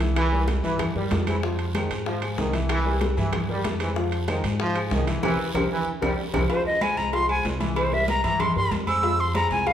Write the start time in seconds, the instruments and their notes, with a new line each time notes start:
Already playing: upright bass C2
0.00 grand piano E3 E4 E5, high timbale, short guiro
0.16 trombone section E3, high bongo, high timbale, long guiro, claves
0.32 grand piano G3 G4 A#4, high bongo, high conga
0.48 high bongo, high conga, high timbale, short guiro
0.63 upright bass G2, trombone section E3, grand piano E3 E4 E5, high bongo, high conga, short guiro
0.79 high bongo, high conga, low conga, high timbale, long guiro, claves
0.95 upright bass G2, trombone section G3, grand piano G3 G4 A#4, high bongo, high conga
1.11 upright bass F2, high bongo, low bongo, high conga, high timbale, low timbale, short guiro
1.27 trombone section E3, grand piano G#3 G#4 C5, high conga, high timbale, short guiro, claves
1.43 grand piano F3 F4 F5, high bongo, high conga, long guiro
1.59 high conga, high timbale
1.75 trombone section D#3, grand piano G#3 G#4 C5, high bongo, high conga, high timbale, short guiro, claves
1.90 upright bass G#2, high timbale, short guiro
2.06 trombone section F3, grand piano F3 F4 F5, high bongo, high conga, long guiro
2.22 grand piano G#3 G#4 C5, high conga, high timbale, claves
2.38 upright bass C2, trombone section D#3, high bongo, low bongo, high conga, short guiro
2.53 grand piano E3 E4 E5, high timbale, short guiro
2.69 trombone section E3, high bongo, high conga, high timbale, long guiro, claves
2.86 grand piano G3 G4 A#4, high bongo, high conga
3.01 high bongo, high conga, high timbale, short guiro
3.17 upright bass G2, trombone section E3, grand piano E3 E4 E5, high bongo, high conga, short guiro
3.33 high bongo, high conga, low conga, high timbale, long guiro, claves
3.48 trombone section G3, grand piano G3 G4 A#4, high bongo, high conga
3.64 upright bass F2, high bongo, low bongo, high conga, high timbale, short guiro
3.80 trombone section E3, grand piano G#3 G#4 C5, high timbale, short guiro, claves
3.96 grand piano F3 F4 F5, high bongo, high conga
4.12 high conga, high timbale
4.28 trombone section D#3, grand piano G#3 G#4 C5, high bongo, high conga, high timbale, short guiro, claves
4.44 upright bass G#2, high conga, high timbale, short guiro
4.59 grand piano F3 F4 F5, trombone section F3, high bongo, high conga, long guiro
4.75 grand piano G#3 G#4 C5, high conga, high timbale, claves
4.91 upright bass C2, trombone section D#3, high bongo, low bongo, high conga, short guiro
5.07 grand piano E3 E4 E5, high timbale, short guiro
5.23 upright bass C2, trombone section E3, grand piano G4 A#4 C5, high bongo, low conga, high timbale, long guiro, claves
5.54 upright bass C2, grand piano G4 A#4 C5, high bongo, low conga, high timbale, long guiro, claves
5.71 trombone section E3
6.01 upright bass C2, trombone section G3, grand piano G4 A#4 C5, high bongo, low conga, high timbale, long guiro, claves
6.33 upright bass C2, trombone section E3, grand piano G4 A#4 C5, high bongo, low conga, high timbale, long guiro, claves
6.49 grand piano F3 F4 F5, flute C5, cowbell, low agogo, long guiro
6.65 flute D#5, high conga
6.81 grand piano G#3 G#4 C5, flute G#5, cowbell, high conga, low agogo, short guiro, claves
6.97 upright bass C2, flute A#5, cowbell, high conga, short guiro
7.13 grand piano F3 F4 F5, flute C6, cowbell, low agogo, long guiro
7.29 grand piano G#3 G#4 C5, flute G#5, high conga, low agogo, claves
7.45 upright bass C2, cowbell, high conga, low timbale, short guiro
7.60 grand piano E3 E4 E5, cowbell, high conga, low agogo, short guiro
7.76 flute C5, cowbell, low agogo, long guiro, claves
7.92 grand piano G3 G4 A#4, flute E5, high conga
8.08 flute A#5, cowbell, high conga, low agogo, short guiro
8.24 upright bass G2, grand piano E3 E4 E5, flute A#5, cowbell, high conga, low agogo, short guiro
8.40 flute C6, cowbell, high conga, low conga, low agogo, long guiro, claves
8.56 upright bass G2, grand piano G3 G4 A#4, flute C6, high conga
8.71 upright bass F2, cowbell, high conga, low agogo, short guiro
8.87 grand piano G#3 G#4 C5, flute E6, high conga, low agogo, short guiro, claves
9.03 grand piano F3 F4 F5, cowbell, high conga, low agogo, long guiro
9.19 flute C6, high conga
9.35 grand piano G#3 G#4 C5, flute A#5, cowbell, high conga, low agogo, short guiro, claves
9.50 upright bass C2, flute G#5, cowbell, high conga, short guiro
9.66 grand piano F3 F4 F5, flute F5, cowbell, high conga, low agogo, long guiro